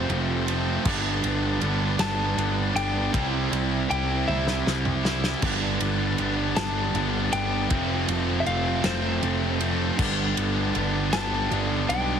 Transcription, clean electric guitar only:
0.00 0.53 C5 medium
2.00 2.76 A5 loud
2.76 3.48 G5 loud
3.90 4.26 G5 loud
4.28 5.10 E5 medium
6.57 7.32 A5 loud
7.33 8.05 G5 loud
8.40 8.46 E5 medium
8.47 8.86 F5 loud
8.85 9.67 C5 medium
11.13 11.89 A5 loud
11.89 12.20 G5 loud

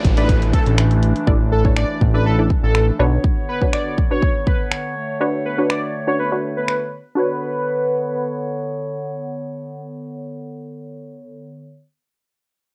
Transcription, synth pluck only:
0.17 0.83 D4 medium
0.17 0.83 E4 medium
0.17 0.83 A4 medium
0.17 0.83 D5 medium
1.27 1.52 D4 medium
1.27 1.52 E4 medium
1.27 1.52 A4 medium
1.27 1.52 D5 loud
1.65 1.97 D4 medium
1.65 1.98 E4 medium
1.65 1.98 A4 medium
1.65 1.98 C#5 medium
2.14 2.30 D4 medium
2.14 2.30 E4 medium
2.14 2.30 A4 medium
2.14 2.30 D5 medium
2.39 2.96 D4 medium
2.39 2.96 E4 medium
2.39 2.96 A4 medium
2.39 2.96 D5 medium
2.99 3.49 D4 medium
2.99 3.49 F#4 medium
2.99 3.49 B4 medium
2.99 3.49 C#5 loud
3.62 3.94 D4 medium
3.62 3.94 F#4 medium
3.62 3.94 B4 medium
3.62 3.94 C#5 medium
4.11 4.77 D4 medium
4.11 4.77 F#4 medium
4.11 4.77 B4 medium
4.11 4.77 C#5 medium
5.21 5.46 D4 medium
5.21 5.46 F#4 medium
5.21 5.46 B4 medium
5.21 5.46 C#5 medium
5.58 5.91 D4 medium
5.58 5.91 F#4 medium
5.58 5.91 B4 medium
5.58 5.91 C#5 medium
6.07 6.23 D4 medium
6.07 6.24 F#4 medium
6.07 6.24 B4 medium
6.07 6.24 C#5 medium
6.32 6.90 D4 medium
6.32 6.90 F#4 medium
6.32 6.90 B4 medium
6.32 6.90 C#5 medium
7.15 11.81 D4 medium
7.15 11.82 F#4 medium
7.15 11.84 B4 medium
7.19 11.85 C#5 medium

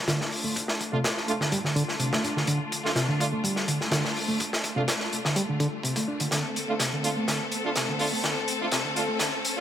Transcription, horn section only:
0.92 0.98 A3 medium
0.92 0.99 D4 medium
0.92 0.98 F4 medium
1.28 1.35 A3 medium
1.28 1.35 D4 medium
1.28 1.35 F4 medium
2.85 2.91 A3 medium
2.85 2.91 D4 medium
2.85 2.91 F4 medium
3.20 3.27 A3 medium
3.20 3.27 D4 medium
3.20 3.27 F4 medium
4.77 4.83 A3 medium
4.77 4.83 D4 medium
4.77 4.83 F4 medium
6.68 6.75 A3 medium
6.68 6.75 D4 medium
6.68 6.74 F4 medium
7.04 7.11 A3 medium
7.04 7.11 D4 medium
7.04 7.11 F4 medium
7.65 7.71 A3 medium
7.65 7.71 D4 medium
7.65 7.71 F4 medium
8.00 8.07 A3 medium
8.00 8.07 D4 medium
8.00 8.07 F4 loud
8.61 8.67 A3 medium
8.61 8.67 D4 medium
8.61 8.67 F4 medium
8.96 9.02 A3 medium
8.96 9.03 D4 medium
8.96 9.03 F4 medium
9.57 9.60 A3 medium
9.57 9.60 D4 medium
9.57 9.60 F4 medium

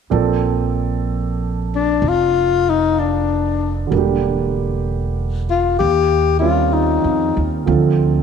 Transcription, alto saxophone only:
1.75 2.10 D4 medium
2.08 2.71 F4 medium
2.70 3.01 D#4 medium
2.99 3.77 D4 medium
5.51 5.78 F4 medium
5.79 6.37 G4 medium
6.39 6.75 F4 medium
6.73 7.52 D#4 medium

